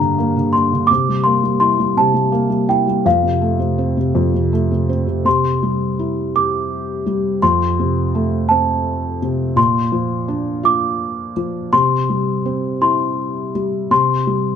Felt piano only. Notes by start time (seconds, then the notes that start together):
Already playing: G2 A#3 D4
0.00 D3
0.18 A#3
0.36 D3
0.56 D4
0.73 D3
0.91 C3
1.09 G3
1.26 A#3
1.44 G3
1.60 E4
1.79 G3
1.97 C3
2.14 G3
2.32 A#3
2.50 G3
2.69 E4
2.87 G3
3.05 F2
3.23 C3
3.42 A3
3.59 C3
3.78 C4
3.97 C3
4.15 F2
4.34 C3
4.53 A3
4.71 C3
4.89 C4
5.07 C3
5.25 C3
5.63 G3
5.99 E4
6.35 G4
7.06 G3
7.43 F2
7.79 C3
8.15 A3
8.51 C4
9.22 C3
9.56 A#2
9.92 F3
10.28 D4
10.63 F4
11.37 F3
11.73 C3
12.10 G3
12.45 C4
12.81 E4
13.55 G3
13.91 C3
14.27 G3